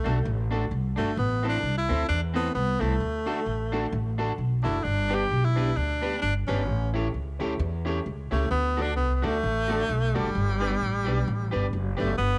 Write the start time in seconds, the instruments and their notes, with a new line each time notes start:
Already playing: tenor saxophone A3
0.04 upright bass B1, upright piano A3 D4 F#4 A4, clean electric guitar D4 F#4 A4
0.25 upright bass A1
0.51 upright piano A3 D4 F#4 A4, clean electric guitar D4 F#4 A4
0.71 upright bass C2
0.96 upright bass G1, tenor saxophone A3, upright piano A3 D4 F#4 A4, clean electric guitar D4 F#4 A4
1.17 upright bass A1, tenor saxophone B3
1.43 upright piano A3 C4 E4 A4, clean electric guitar C4 E4 A4
1.49 tenor saxophone D4
1.63 upright bass C2, upright piano E4 A4
1.77 tenor saxophone E4
1.89 upright bass D2, upright piano A3 C4 E4 A4, clean electric guitar C4 E4 A4
2.09 upright bass E2, tenor saxophone D4
2.34 upright piano A3 C4 E4 A4, tenor saxophone B3, clean electric guitar C4 E4 A4
2.55 upright bass C2, tenor saxophone B3
2.79 upright bass C2, tenor saxophone A3, upright piano A3 C4 E4 A4, clean electric guitar C4 E4 A4
3.00 upright bass D2
3.26 upright piano A3 D4 F#4 A4, clean electric guitar D4 F#4 A4
3.46 upright bass A1
3.72 upright piano A3 D4 F#4 A4, clean electric guitar D4 F#4 A4
3.92 upright bass A1
4.18 upright piano A3 D4 F#4 A4, clean electric guitar D4 F#4 A4
4.38 upright bass B1
4.63 upright bass F#1, upright piano A3 D4 F#4 A4, clean electric guitar D4 F#4 A4, tenor saxophone E4
4.83 upright bass G1, tenor saxophone D4
5.09 upright piano B3 D4 G4 B4, clean electric guitar D4 G4 B4
5.14 tenor saxophone G4
5.31 upright bass B1
5.45 tenor saxophone E4
5.56 upright piano B3 D4 G4 B4, clean electric guitar D4 G4 B4
5.76 upright bass D2, tenor saxophone D4
6.01 upright piano B3 D4 G4 B4, clean electric guitar D4 G4 B4
6.22 upright bass G1, tenor saxophone D4
6.47 upright bass G1, upright piano B3 D4 G4 B4, tenor saxophone C#4, clean electric guitar D4 G4 B4
6.68 upright bass A1
6.94 upright piano C#4 E4 G4 A4, clean electric guitar E4 G4 C#5
7.14 upright bass C#2
7.39 upright bass D2, upright piano C#4 E4 G4 A4, clean electric guitar E4 G4 C#5
7.59 upright bass E2
7.85 upright piano C#4 E4 G4 A4, clean electric guitar E4 G4 C#5
8.06 upright bass C#2
8.31 upright bass C#2, tenor saxophone A3, upright piano C#4 E4 G4 A4, clean electric guitar E4 G4 C#5
8.51 upright bass D2, tenor saxophone B3
8.77 upright piano A3 D4 F#4 A4, clean electric guitar F#4 A4 D5
8.82 tenor saxophone D4
8.96 upright bass C2, tenor saxophone B3, upright piano F#4 A4
9.14 tenor saxophone B3
9.22 upright bass D2, upright piano A3 D4 F#4 A4, tenor saxophone A3, clean electric guitar F#4 A4 D5
9.43 upright bass A1
9.68 upright piano A3 D4 F#4 A4, clean electric guitar F#4 A4 D5
9.89 upright bass B1, muted clean electric guitar stroke
10.14 upright bass F#1, tenor saxophone G3, upright piano A3 D4 F#4 A4, clean electric guitar F#4 A4 D5
10.35 upright bass G1
10.60 upright piano B3 D4 G4 B4, clean electric guitar G4 B4 D5
10.81 upright bass A1
11.05 upright bass B1, upright piano B3 D4 G4 B4, clean electric guitar G4 B4 D5
11.28 upright bass A1
11.51 upright bass G1, upright piano B3 D4 G4 B4, clean electric guitar G4 B4 D5
11.73 upright bass F#1
11.97 upright bass F#1, tenor saxophone A3, upright piano B3 D4 G4 B4, clean electric guitar G4 B4 D5
12.18 upright bass G1, tenor saxophone B3